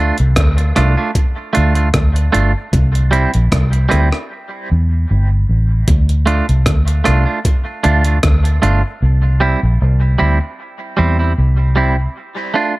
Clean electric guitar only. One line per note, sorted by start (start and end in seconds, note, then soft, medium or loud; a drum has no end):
0.00 0.16 A3 medium
0.00 0.16 D4 loud
0.00 0.16 F4 loud
0.76 0.94 A3 medium
0.76 0.95 D4 medium
0.76 0.95 F4 medium
0.97 1.10 A3 medium
0.97 1.10 D4 medium
0.97 1.10 F4 medium
1.53 1.72 A3 medium
1.53 1.73 D4 medium
1.53 1.73 F4 medium
1.75 1.88 A3 medium
1.75 1.88 D4 medium
1.75 1.88 F4 medium
2.32 2.51 A3 medium
2.32 2.52 D4 loud
2.32 2.52 F4 loud
3.11 3.30 G3 medium
3.11 3.31 C4 medium
3.11 3.31 E4 medium
3.89 4.08 G3 medium
3.89 4.09 C4 medium
3.89 4.09 E4 medium
4.11 muted clean electric guitar stroke soft
6.26 6.45 A3 medium
6.26 6.45 D4 loud
6.26 6.45 F4 loud
7.04 7.23 A3 medium
7.04 7.24 D4 medium
7.04 7.24 F4 medium
7.25 7.39 A3 soft
7.25 7.39 D4 medium
7.25 7.38 F4 medium
7.84 8.02 A3 medium
7.84 8.02 D4 loud
7.84 8.03 F4 loud
8.05 8.18 A3 soft
8.05 8.18 D4 medium
8.05 8.17 F4 medium
8.62 8.81 A3 medium
8.62 8.81 D4 medium
8.62 8.81 F4 loud
9.40 9.59 G3 loud
9.40 9.59 C4 medium
9.40 9.60 E4 loud
10.19 10.38 G3 medium
10.19 10.38 C4 medium
10.19 10.38 E4 medium
10.40 muted clean electric guitar stroke soft
10.97 11.16 G3 medium
10.97 11.17 C4 loud
10.97 11.17 E4 loud
11.19 11.33 G3 medium
11.19 11.32 C4 medium
11.19 11.32 E4 medium
11.76 11.95 G3 medium
11.76 11.95 C4 medium
11.76 11.96 E4 medium
12.54 12.73 A3 medium
12.54 12.74 D4 loud
12.54 12.74 F4 loud